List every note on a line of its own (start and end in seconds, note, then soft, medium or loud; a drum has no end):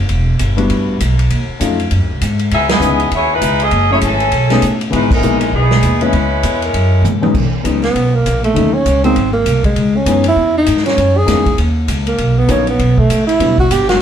0.09 0.38 E1 medium
0.09 kick soft
0.09 ride medium
0.39 0.68 G1 medium
0.39 kick soft
0.39 hi-hat pedal medium
0.39 ride medium
0.57 0.96 G3 medium
0.57 0.96 B3 medium
0.57 0.97 D4 medium
0.57 0.97 E4 medium
0.57 0.97 F#4 medium
0.57 ride soft
0.70 0.99 A1 medium
0.70 kick soft
0.70 ride medium
1.00 1.29 B1 medium
1.00 kick soft
1.00 hi-hat pedal medium
1.00 ride medium
1.19 ride soft
1.30 1.47 D#2 medium
1.30 kick soft
1.30 ride medium
1.48 muted upright bass stroke soft
1.60 1.89 F2 medium
1.60 1.76 F#3 medium
1.60 1.76 A3 medium
1.60 1.76 C#4 medium
1.60 1.77 D#4 medium
1.60 1.77 F4 medium
1.60 kick soft
1.60 hi-hat pedal medium
1.60 ride medium
1.80 ride soft
1.91 2.00 F#2 medium
1.91 kick soft
1.91 ride medium
2.00 2.10 D2 medium
2.11 2.20 C2 medium
2.21 2.50 G#2 medium
2.21 kick soft
2.21 hi-hat pedal medium
2.21 ride medium
2.39 ride soft
2.51 2.79 C#2 medium
2.51 2.69 B3 medium
2.51 2.69 D#4 medium
2.51 2.69 G#4 medium
2.51 2.69 E5 loud
2.51 kick soft
2.51 ride medium
2.69 3.08 B3 medium
2.69 3.08 E4 medium
2.69 3.08 G#4 medium
2.69 3.08 D#5 loud
2.69 snare medium
2.69 ride medium
2.79 3.09 C#2 medium
2.79 2.96 E3 medium
2.79 2.97 B3 medium
2.79 2.97 C#4 medium
2.79 2.97 D#4 medium
2.79 2.97 G#4 medium
2.79 hi-hat pedal medium
3.00 ride soft
3.11 3.40 D#2 medium
3.11 3.30 B3 medium
3.11 3.30 E4 medium
3.11 3.30 G#4 medium
3.11 3.30 C#5 loud
3.11 kick soft
3.11 ride medium
3.33 3.61 G#3 medium
3.33 3.61 D#4 medium
3.33 3.61 E4 medium
3.33 3.62 B4 medium
3.41 3.70 C#2 medium
3.41 kick soft
3.41 hi-hat pedal medium
3.41 ride medium
3.60 3.91 C#4 medium
3.60 3.91 G#4 medium
3.60 3.91 A4 medium
3.60 3.91 D#5 loud
3.60 ride soft
3.71 4.01 F#1 medium
3.71 kick soft
3.71 ride medium
3.90 4.00 F#3 medium
3.90 4.00 A3 medium
3.90 3.96 A3 medium
3.90 4.01 C#4 medium
3.90 4.01 E4 medium
3.90 3.97 E4 medium
3.90 3.97 G#4 medium
3.90 4.01 G#4 medium
3.90 3.97 C#5 medium
4.01 4.31 G#1 medium
4.01 4.30 E3 medium
4.01 4.77 C#4 medium
4.01 4.77 G#4 medium
4.01 4.77 A4 medium
4.01 kick soft
4.01 hi-hat pedal medium
4.01 ride medium
4.20 ride soft
4.31 4.61 B1 medium
4.31 kick soft
4.31 ride medium
4.50 4.60 A3 medium
4.50 4.61 B3 medium
4.50 4.61 C#4 medium
4.50 4.61 D#4 medium
4.50 4.62 G#4 medium
4.50 snare medium
4.50 ride medium
4.62 4.91 A1 medium
4.62 kick soft
4.62 hi-hat pedal medium
4.62 ride medium
4.81 ride soft
4.90 5.20 G#1 medium
4.90 5.07 E3 medium
4.90 5.08 G#3 medium
4.90 5.08 B3 medium
4.90 5.08 D#4 medium
4.90 5.08 F#4 medium
4.90 kick soft
4.90 ride medium
4.94 5.10 G#3 medium
4.94 5.11 D#4 medium
4.94 5.10 E4 medium
4.94 5.10 B4 medium
5.11 5.51 G#3 medium
5.11 5.51 D#4 medium
5.11 5.51 E4 medium
5.11 5.51 A#4 medium
5.11 kick medium
5.11 crash medium
5.21 5.50 A#1 medium
5.21 5.38 E3 medium
5.21 5.38 G#3 medium
5.21 5.39 B3 medium
5.21 5.39 D#4 medium
5.21 5.39 F#4 medium
5.21 hi-hat pedal medium
5.41 ride medium
5.53 5.82 B1 medium
5.53 5.99 E3 medium
5.53 5.99 B3 medium
5.53 5.99 D#4 medium
5.53 5.99 G#4 medium
5.53 kick soft
5.71 snare medium
5.82 6.12 D#2 medium
5.82 kick soft
5.82 hi-hat pedal medium
5.82 ride medium
6.00 6.11 E3 medium
6.00 6.11 G#3 medium
6.00 6.61 G#3 medium
6.00 6.12 B3 medium
6.00 6.62 C#4 medium
6.00 6.12 C#4 medium
6.00 6.61 E4 medium
6.00 6.12 E4 medium
6.00 6.61 B4 medium
6.00 ride soft
6.13 6.42 C#2 medium
6.13 kick soft
6.13 ride medium
6.43 6.72 E2 medium
6.43 kick soft
6.43 hi-hat pedal medium
6.43 ride medium
6.62 7.05 G#3 medium
6.62 7.05 C#4 medium
6.62 7.05 E4 medium
6.62 7.04 A#4 medium
6.62 ride soft
6.74 7.01 F#2 medium
6.74 kick soft
6.74 ride medium
7.02 7.32 G#2 medium
7.02 hi-hat pedal medium
7.02 high tom medium
7.21 7.32 F#3 medium
7.21 7.32 G#3 medium
7.21 7.33 B3 medium
7.21 7.33 C#4 medium
7.21 7.33 D#4 medium
7.21 high tom medium
7.34 7.51 B1 medium
7.34 kick medium
7.34 crash medium
7.52 muted upright bass stroke soft
7.63 7.93 C#2 medium
7.63 7.80 F#3 medium
7.63 7.80 G#3 soft
7.63 7.80 B3 soft
7.63 7.81 C#4 soft
7.63 7.81 D#4 medium
7.63 kick soft
7.63 hi-hat pedal soft
7.63 ride medium
7.83 8.16 B3 medium
7.83 snare soft
7.83 ride soft
7.95 8.24 B1 medium
7.95 kick soft
7.95 ride medium
8.14 8.43 A#3 medium
8.25 8.54 A#1 medium
8.25 kick soft
8.25 hi-hat pedal medium
8.25 ride medium
8.44 8.75 A3 medium
8.44 ride soft
8.54 8.84 D#2 medium
8.54 8.70 D#3 medium
8.54 8.71 F#3 medium
8.54 8.71 A3 soft
8.54 8.71 C#4 soft
8.54 8.72 D#4 medium
8.54 kick soft
8.54 ride medium
8.74 9.04 C#4 medium
8.85 9.14 C#2 medium
8.85 kick soft
8.85 hi-hat pedal medium
8.85 ride medium
9.03 9.14 F#3 medium
9.03 9.14 G#3 medium
9.03 9.14 A#3 medium
9.03 9.32 C4 medium
9.03 9.14 C4 medium
9.03 9.15 D#4 medium
9.03 ride soft
9.16 9.45 G#1 medium
9.16 kick soft
9.16 ride medium
9.33 9.61 A#3 medium
9.45 9.75 C2 medium
9.45 kick soft
9.45 hi-hat pedal medium
9.45 ride medium
9.64 9.98 G#3 medium
9.64 kick medium
9.64 ride soft
9.76 10.05 C#2 medium
9.76 kick soft
9.76 ride medium
9.96 10.27 C#4 medium
10.06 10.35 F#2 medium
10.06 10.22 E3 medium
10.06 10.22 G#3 medium
10.06 10.23 B3 medium
10.06 10.23 C#4 medium
10.06 10.23 D#4 medium
10.06 kick soft
10.06 hi-hat pedal medium
10.06 ride medium
10.24 ride medium
10.28 10.54 E4 medium
10.36 10.65 E2 medium
10.36 kick soft
10.58 10.84 D#4 medium
10.66 10.96 G#2 medium
10.66 kick soft
10.66 hi-hat pedal medium
10.66 ride medium
10.77 snare soft
10.86 11.19 C#4 medium
10.86 snare soft
10.86 ride soft
10.97 11.26 F#2 medium
10.97 kick soft
10.97 ride medium
11.18 11.58 G#4 medium
11.25 11.56 E2 medium
11.25 11.42 E3 medium
11.25 11.43 G#3 medium
11.25 11.43 A#3 medium
11.25 11.43 C#4 medium
11.25 11.43 D#4 medium
11.25 kick soft
11.25 snare soft
11.25 hi-hat pedal medium
11.25 ride medium
11.46 kick medium
11.46 ride soft
11.58 11.87 D#2 medium
11.58 kick soft
11.58 ride medium
11.88 12.17 C#2 medium
11.88 kick soft
11.88 hi-hat pedal medium
11.88 ride medium
12.07 12.39 A#3 medium
12.07 ride soft
12.18 12.47 B1 medium
12.18 kick soft
12.18 ride medium
12.38 12.52 B3 medium
12.47 12.77 A#1 medium
12.47 12.64 F#3 medium
12.47 12.64 A#3 medium
12.47 12.64 B3 medium
12.47 12.65 C#4 medium
12.47 12.68 C#4 medium
12.47 12.65 D#4 medium
12.47 kick soft
12.47 hi-hat pedal medium
12.47 ride medium
12.67 13.00 B3 medium
12.67 ride soft
12.79 13.08 B1 medium
12.79 kick soft
12.79 ride medium
12.98 13.26 A3 medium
12.98 kick medium
13.10 13.38 A1 medium
13.10 kick soft
13.10 hi-hat pedal medium
13.10 ride medium
13.27 13.55 E4 medium
13.27 ride medium
13.40 13.68 E1 medium
13.40 13.56 F#3 soft
13.40 13.56 G3 soft
13.40 13.56 B3 soft
13.40 13.56 D4 soft
13.40 13.57 E4 medium
13.40 kick soft
13.40 ride medium
13.58 13.73 F#4 medium
13.58 kick medium
13.70 13.99 G1 medium
13.70 13.88 G4 medium
13.70 kick soft
13.70 hi-hat pedal medium
13.70 ride medium
13.89 14.02 F#4 medium
13.89 snare medium
13.89 ride soft